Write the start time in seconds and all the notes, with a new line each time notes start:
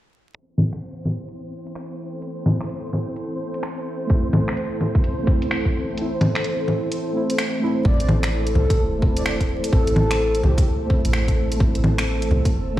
0.35 C4 E4 C5, closed hi-hat
0.58 closed hi-hat, low bongo
0.73 finger snap
0.82 closed hi-hat
1.05 low bongo
1.19 A4
1.29 closed hi-hat
1.63 C5, closed hi-hat
1.75 finger snap, closed hi-hat
2.22 closed hi-hat
2.46 closed hi-hat, low bongo
2.61 finger snap
2.69 closed hi-hat
2.93 low bongo
3.16 closed hi-hat
3.54 closed hi-hat
3.63 finger snap, closed hi-hat
4.07 A3 C4, kick, closed hi-hat
4.14 E4
4.33 closed hi-hat, low bongo
4.48 finger snap
4.57 closed hi-hat
4.81 low bongo
4.95 kick
5.04 closed hi-hat
5.23 A3, kick
5.27 C4 E4
5.42 closed hi-hat
5.51 finger snap, closed hi-hat
5.65 kick
5.94 A3 C4, closed hi-hat
6.01 E4
6.21 closed hi-hat, low bongo
6.35 finger snap
6.44 closed hi-hat
6.68 low bongo
6.92 closed hi-hat
7.13 A3 C4 E4
7.30 closed hi-hat
7.38 finger snap, closed hi-hat
7.60 A3 C4 E4
7.81 A1 A3, kick
7.85 A3 C4 E4 A4 D5
8.00 closed hi-hat
8.09 low bongo
8.23 finger snap, closed hi-hat
8.47 closed hi-hat
8.55 C2 A4, low bongo
8.70 kick, closed hi-hat
8.79 E1
8.99 A3 C4, kick
9.06 E4
9.17 D5, closed hi-hat
9.26 D5, finger snap
9.40 kick, closed hi-hat
9.64 closed hi-hat
9.69 A3 C4 A4
9.73 A1 E4, kick
9.87 closed hi-hat
9.96 low bongo
10.11 finger snap, closed hi-hat
10.35 closed hi-hat
10.43 C2 G4, low bongo
10.58 G4, kick, closed hi-hat
10.86 A3 C4, kick
10.94 E4
11.05 A1, closed hi-hat
11.13 finger snap
11.28 kick, closed hi-hat
11.52 closed hi-hat
11.56 A3 C4
11.60 A1 E4, kick
11.75 closed hi-hat
11.84 low bongo
11.98 finger snap, closed hi-hat
12.22 closed hi-hat
12.31 C2, low bongo
12.45 kick, closed hi-hat
12.54 E1
12.74 A3